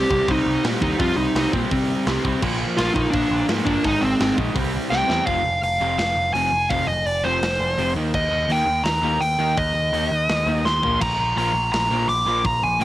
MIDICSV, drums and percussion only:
0, 0, Header, 1, 2, 480
1, 0, Start_track
1, 0, Tempo, 357569
1, 1337, Time_signature, 4, 2, 24, 8
1, 17242, End_track
2, 0, Start_track
2, 0, Title_t, "Drums"
2, 142, Note_on_c, 9, 36, 102
2, 276, Note_off_c, 9, 36, 0
2, 380, Note_on_c, 9, 46, 72
2, 381, Note_on_c, 9, 36, 121
2, 514, Note_off_c, 9, 46, 0
2, 515, Note_off_c, 9, 36, 0
2, 864, Note_on_c, 9, 46, 77
2, 870, Note_on_c, 9, 38, 123
2, 998, Note_off_c, 9, 46, 0
2, 1005, Note_off_c, 9, 38, 0
2, 1100, Note_on_c, 9, 36, 87
2, 1235, Note_off_c, 9, 36, 0
2, 1334, Note_on_c, 9, 46, 78
2, 1340, Note_on_c, 9, 36, 125
2, 1468, Note_off_c, 9, 46, 0
2, 1474, Note_off_c, 9, 36, 0
2, 1821, Note_on_c, 9, 46, 69
2, 1828, Note_on_c, 9, 38, 124
2, 1956, Note_off_c, 9, 46, 0
2, 1962, Note_off_c, 9, 38, 0
2, 2059, Note_on_c, 9, 36, 98
2, 2193, Note_off_c, 9, 36, 0
2, 2301, Note_on_c, 9, 36, 119
2, 2302, Note_on_c, 9, 46, 76
2, 2435, Note_off_c, 9, 36, 0
2, 2436, Note_off_c, 9, 46, 0
2, 2774, Note_on_c, 9, 46, 74
2, 2781, Note_on_c, 9, 38, 115
2, 2908, Note_off_c, 9, 46, 0
2, 2915, Note_off_c, 9, 38, 0
2, 3018, Note_on_c, 9, 36, 92
2, 3153, Note_off_c, 9, 36, 0
2, 3255, Note_on_c, 9, 36, 125
2, 3255, Note_on_c, 9, 49, 118
2, 3389, Note_off_c, 9, 36, 0
2, 3389, Note_off_c, 9, 49, 0
2, 3733, Note_on_c, 9, 46, 67
2, 3739, Note_on_c, 9, 38, 126
2, 3867, Note_off_c, 9, 46, 0
2, 3874, Note_off_c, 9, 38, 0
2, 3970, Note_on_c, 9, 36, 99
2, 4105, Note_off_c, 9, 36, 0
2, 4206, Note_on_c, 9, 46, 71
2, 4208, Note_on_c, 9, 36, 127
2, 4341, Note_off_c, 9, 46, 0
2, 4342, Note_off_c, 9, 36, 0
2, 4680, Note_on_c, 9, 46, 75
2, 4687, Note_on_c, 9, 38, 120
2, 4815, Note_off_c, 9, 46, 0
2, 4821, Note_off_c, 9, 38, 0
2, 4922, Note_on_c, 9, 36, 79
2, 5056, Note_off_c, 9, 36, 0
2, 5156, Note_on_c, 9, 46, 77
2, 5161, Note_on_c, 9, 36, 124
2, 5291, Note_off_c, 9, 46, 0
2, 5295, Note_off_c, 9, 36, 0
2, 5640, Note_on_c, 9, 46, 76
2, 5647, Note_on_c, 9, 38, 118
2, 5775, Note_off_c, 9, 46, 0
2, 5781, Note_off_c, 9, 38, 0
2, 5879, Note_on_c, 9, 36, 100
2, 6013, Note_off_c, 9, 36, 0
2, 6117, Note_on_c, 9, 36, 127
2, 6117, Note_on_c, 9, 46, 79
2, 6251, Note_off_c, 9, 36, 0
2, 6251, Note_off_c, 9, 46, 0
2, 6607, Note_on_c, 9, 38, 78
2, 6741, Note_off_c, 9, 38, 0
2, 6845, Note_on_c, 9, 38, 90
2, 6980, Note_off_c, 9, 38, 0
2, 7073, Note_on_c, 9, 46, 52
2, 7074, Note_on_c, 9, 36, 104
2, 7207, Note_off_c, 9, 46, 0
2, 7209, Note_off_c, 9, 36, 0
2, 7560, Note_on_c, 9, 46, 58
2, 7694, Note_off_c, 9, 46, 0
2, 8037, Note_on_c, 9, 46, 56
2, 8043, Note_on_c, 9, 38, 107
2, 8171, Note_off_c, 9, 46, 0
2, 8177, Note_off_c, 9, 38, 0
2, 8523, Note_on_c, 9, 46, 61
2, 8658, Note_off_c, 9, 46, 0
2, 8998, Note_on_c, 9, 46, 61
2, 9001, Note_on_c, 9, 36, 115
2, 9132, Note_off_c, 9, 46, 0
2, 9135, Note_off_c, 9, 36, 0
2, 9485, Note_on_c, 9, 46, 58
2, 9619, Note_off_c, 9, 46, 0
2, 9967, Note_on_c, 9, 46, 64
2, 9974, Note_on_c, 9, 38, 110
2, 10101, Note_off_c, 9, 46, 0
2, 10108, Note_off_c, 9, 38, 0
2, 10449, Note_on_c, 9, 46, 57
2, 10583, Note_off_c, 9, 46, 0
2, 10927, Note_on_c, 9, 36, 117
2, 10928, Note_on_c, 9, 49, 94
2, 11061, Note_off_c, 9, 36, 0
2, 11062, Note_off_c, 9, 49, 0
2, 11406, Note_on_c, 9, 46, 57
2, 11541, Note_off_c, 9, 46, 0
2, 11883, Note_on_c, 9, 46, 58
2, 11890, Note_on_c, 9, 38, 107
2, 12017, Note_off_c, 9, 46, 0
2, 12024, Note_off_c, 9, 38, 0
2, 12372, Note_on_c, 9, 46, 61
2, 12506, Note_off_c, 9, 46, 0
2, 12848, Note_on_c, 9, 46, 58
2, 12853, Note_on_c, 9, 36, 105
2, 12983, Note_off_c, 9, 46, 0
2, 12987, Note_off_c, 9, 36, 0
2, 13336, Note_on_c, 9, 46, 63
2, 13471, Note_off_c, 9, 46, 0
2, 13813, Note_on_c, 9, 46, 62
2, 13819, Note_on_c, 9, 38, 113
2, 13947, Note_off_c, 9, 46, 0
2, 13954, Note_off_c, 9, 38, 0
2, 14307, Note_on_c, 9, 38, 58
2, 14441, Note_off_c, 9, 38, 0
2, 14541, Note_on_c, 9, 43, 79
2, 14675, Note_off_c, 9, 43, 0
2, 14785, Note_on_c, 9, 36, 110
2, 14789, Note_on_c, 9, 49, 100
2, 14789, Note_on_c, 9, 55, 82
2, 14920, Note_off_c, 9, 36, 0
2, 14923, Note_off_c, 9, 49, 0
2, 14923, Note_off_c, 9, 55, 0
2, 15277, Note_on_c, 9, 46, 56
2, 15411, Note_off_c, 9, 46, 0
2, 15752, Note_on_c, 9, 46, 62
2, 15759, Note_on_c, 9, 38, 110
2, 15886, Note_off_c, 9, 46, 0
2, 15893, Note_off_c, 9, 38, 0
2, 16227, Note_on_c, 9, 46, 58
2, 16361, Note_off_c, 9, 46, 0
2, 16709, Note_on_c, 9, 36, 113
2, 16711, Note_on_c, 9, 46, 54
2, 16843, Note_off_c, 9, 36, 0
2, 16846, Note_off_c, 9, 46, 0
2, 17194, Note_on_c, 9, 46, 59
2, 17242, Note_off_c, 9, 46, 0
2, 17242, End_track
0, 0, End_of_file